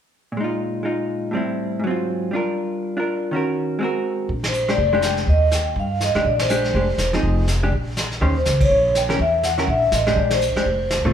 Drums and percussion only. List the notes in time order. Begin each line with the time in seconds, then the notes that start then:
4.29 brush sweep, kick
4.44 snare, ride
4.53 hi-hat pedal
4.68 snare
4.78 brush sweep, kick
5.02 snare, hi-hat pedal
5.17 snare
5.26 brush sweep, kick
5.51 snare, hi-hat pedal
5.76 brush sweep, kick
6.00 snare, hi-hat pedal
6.15 snare
6.25 brush sweep, kick
6.39 snare, ride
6.49 hi-hat pedal
6.64 snare
6.74 brush sweep, kick
6.98 snare, hi-hat pedal
7.13 snare
7.23 brush sweep, kick
7.48 snare, hi-hat pedal
7.72 brush sweep, kick
7.97 snare, hi-hat pedal
8.11 snare
8.21 brush sweep, kick
8.45 snare, hi-hat pedal
8.60 kick, ride
8.71 brush sweep
8.95 snare, hi-hat pedal
9.10 snare
9.19 brush sweep, kick
9.43 snare, hi-hat pedal
9.58 snare
9.68 brush sweep, kick
9.92 snare, hi-hat pedal
10.06 snare
10.16 brush sweep, kick
10.30 snare, ride
10.41 hi-hat pedal
10.56 snare
10.66 brush sweep, kick
10.90 snare, hi-hat pedal